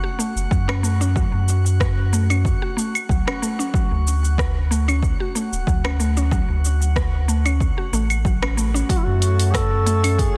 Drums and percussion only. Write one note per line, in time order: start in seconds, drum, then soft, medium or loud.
0.20 cabasa medium
0.37 cabasa soft
0.51 kick loud
0.51 cabasa soft
0.69 cross-stick medium
0.69 claves medium
0.84 cabasa medium
1.01 cabasa soft
1.16 kick loud
1.16 cabasa soft
1.48 cabasa medium
1.66 cabasa soft
1.80 kick medium
1.80 cross-stick medium
1.80 cabasa soft
2.13 cabasa medium
2.30 cabasa soft
2.30 claves medium
2.45 kick medium
2.45 cabasa soft
2.78 cabasa medium
2.95 cabasa soft
2.95 claves medium
3.09 kick medium
3.09 cabasa soft
3.28 cross-stick medium
3.28 claves medium
3.43 cabasa medium
3.60 cabasa soft
3.74 kick loud
3.74 cabasa soft
4.08 cabasa medium
4.25 cabasa soft
4.38 kick medium
4.38 cross-stick medium
4.38 cabasa soft
4.72 cabasa medium
4.89 cabasa soft
4.89 claves medium
5.03 kick medium
5.03 cabasa soft
5.36 cabasa medium
5.53 cabasa soft
5.67 kick medium
5.67 cabasa soft
5.85 cross-stick medium
5.85 claves medium
6.00 cabasa medium
6.17 cabasa soft
6.31 kick loud
6.31 cabasa soft
6.65 cabasa medium
6.82 cabasa soft
6.96 kick medium
6.96 cross-stick medium
6.96 cabasa soft
7.29 cabasa medium
7.46 cabasa soft
7.46 claves medium
7.60 kick medium
7.60 cabasa soft
7.94 cabasa medium
8.10 cabasa soft
8.10 claves medium
8.25 kick loud
8.25 cabasa soft
8.43 cross-stick medium
8.43 claves medium
8.58 cabasa medium
8.76 cabasa soft
8.89 kick loud
8.89 open hi-hat medium
8.89 cabasa soft
9.22 open hi-hat soft
9.22 cabasa medium
9.40 open hi-hat soft
9.40 cabasa soft
9.54 kick medium
9.54 cross-stick medium
9.54 open hi-hat medium
9.54 cabasa soft
9.87 open hi-hat soft
9.87 cabasa medium
10.04 open hi-hat soft
10.04 cabasa soft
10.04 claves medium
10.19 kick loud
10.19 open hi-hat medium
10.19 cabasa soft